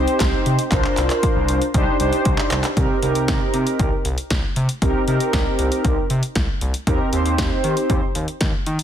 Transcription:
Already playing: analog polysynth C4 D#4 G4 C5
0.08 closed hi-hat
0.20 analog synth bass C2, kick, snare, clap, closed hi-hat
0.46 analog synth bass C3, closed hi-hat
0.59 closed hi-hat
0.72 analog synth bass C2, analog polysynth D4 F4 A#4 C5, kick, clap, closed hi-hat
0.85 clap
0.97 analog synth bass C2, clap, closed hi-hat
1.10 clap, closed hi-hat
1.23 kick, closed hi-hat
1.36 analog synth bass C2
1.49 analog synth bass C2, closed hi-hat
1.62 closed hi-hat
1.74 analog synth bass C2, analog polysynth D4 D#4 G4 C5, kick, closed hi-hat
2.00 analog synth bass C2, analog polysynth D4 D#4 G4 C5, closed hi-hat
2.13 closed hi-hat
2.25 analog synth bass C2, kick, closed hi-hat
2.38 clap
2.51 analog synth bass C2, clap, closed hi-hat
2.64 clap, closed hi-hat
2.77 analog synth bass C2, analog polysynth C4 D#4 G4 A#4, kick, closed hi-hat
3.02 analog synth bass C2, analog polysynth C4 D#4 G4 A#4, closed hi-hat
3.15 analog synth bass C2, closed hi-hat
3.28 analog synth bass C2, kick, snare, closed hi-hat
3.54 analog synth bass C3, closed hi-hat
3.67 closed hi-hat
3.79 analog synth bass C2, kick, closed hi-hat
4.05 analog synth bass C2, closed hi-hat
4.18 closed hi-hat
4.30 analog synth bass C2, kick, snare, closed hi-hat
4.56 analog synth bass C3, closed hi-hat
4.69 closed hi-hat
4.82 analog synth bass C2, analog polysynth C4 D#4 G4 A#4, kick, closed hi-hat
5.07 analog synth bass C3, analog polysynth C4 D#4 G4 A#4, closed hi-hat
5.20 closed hi-hat
5.33 analog synth bass C2, kick, snare, closed hi-hat
5.59 analog synth bass C2, closed hi-hat
5.72 closed hi-hat
5.85 analog synth bass C2, kick, closed hi-hat
6.10 analog synth bass C3, closed hi-hat
6.23 closed hi-hat
6.35 analog synth bass C2, kick, snare, closed hi-hat
6.61 analog synth bass C2, closed hi-hat
6.74 closed hi-hat
6.87 analog synth bass D#2, analog polysynth C4 D#4 G4 A#4, kick, closed hi-hat
7.13 analog synth bass D#2, analog polysynth C4 D#4 G4 C5, closed hi-hat
7.26 analog synth bass D#2, closed hi-hat
7.38 analog synth bass D#2, kick, snare, closed hi-hat
7.64 analog synth bass D#3, closed hi-hat
7.77 closed hi-hat
7.90 analog synth bass D#2, kick, closed hi-hat
8.15 analog synth bass D#2, closed hi-hat
8.28 closed hi-hat
8.41 analog synth bass D#2, kick, snare, closed hi-hat
8.66 analog synth bass D#3, closed hi-hat
8.79 closed hi-hat

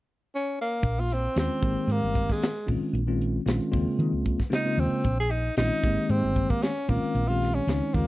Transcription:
0.35 tenor saxophone C#4
0.61 tenor saxophone A#3
0.83 fretless electric bass A#1, kick, closed hi-hat
1.00 tenor saxophone F4
1.10 tenor saxophone C4, snare, closed hi-hat
1.36 fretless electric bass D#2, tine electric piano D#3 G#3 C4 C#4 F4, tenor saxophone C4, snare, closed hi-hat
1.62 fretless electric bass G#1, tine electric piano D#3 G#3 A#3 C4 G4, kick, closed hi-hat
1.87 fretless electric bass G#2, tenor saxophone A#3, closed hi-hat
2.02 fretless electric bass G1
2.15 kick, closed hi-hat
2.29 tenor saxophone G#3, kick, snare
2.42 snare, closed hi-hat
2.66 fretless electric bass A#1, tine electric piano D#3 G#3 C4 C#4 F4, kick, open hi-hat
2.81 muted fretless electric bass stroke
2.93 fretless electric bass A#1, closed hi-hat
3.07 tine electric piano D#3 G#3 C4 C#4 F4
3.21 closed hi-hat
3.46 fretless electric bass A#1, tine electric piano D#3 G#3 C4 C#4 F4, snare, closed hi-hat
3.71 fretless electric bass D#2, tine electric piano C#3 G#3 A#3 C4 F4, kick, open hi-hat
3.99 fretless electric bass D#3, closed hi-hat
4.12 fretless electric bass C#2
4.26 kick, closed hi-hat
4.40 kick, snare
4.50 tine electric piano C#3 G#3 A#3 C4 F4, snare, closed hi-hat
4.55 tenor saxophone D#4
4.65 tine electric piano C#3 G#3 A#3 C4 F4
4.77 fretless electric bass D#2, tenor saxophone C4, open hi-hat
4.92 muted fretless electric bass stroke
5.04 fretless electric bass A#1, kick, closed hi-hat
5.20 tenor saxophone G#4
5.31 tenor saxophone D#4, closed hi-hat
5.57 fretless electric bass A#1, tine electric piano D#3 G#3 C4 C#4 F4, tenor saxophone D#4, snare, closed hi-hat
5.83 fretless electric bass G#1, tine electric piano D#3 G#3 A#3 C4 G4, kick, closed hi-hat
6.09 fretless electric bass G#2, tenor saxophone C4, closed hi-hat
6.23 fretless electric bass G1
6.36 kick, closed hi-hat
6.50 tenor saxophone A#3, kick
6.62 tenor saxophone C#4, snare, closed hi-hat
6.88 fretless electric bass A#1, tine electric piano D#3 G#3 C4 C#4 F4, tenor saxophone A#3, kick, open hi-hat
7.02 muted fretless electric bass stroke
7.15 fretless electric bass A#1, closed hi-hat
7.28 tine electric piano D#3 G#3 C4 C#4 G4, tenor saxophone F4
7.42 snare, closed hi-hat
7.55 tenor saxophone C#4
7.67 fretless electric bass C#2, tine electric piano D#3 G#3 C4 C#4 D#4, snare, closed hi-hat
7.94 fretless electric bass D#2, tine electric piano C#3 G#3 A#3 C4 F4, tenor saxophone A#3, kick, open hi-hat

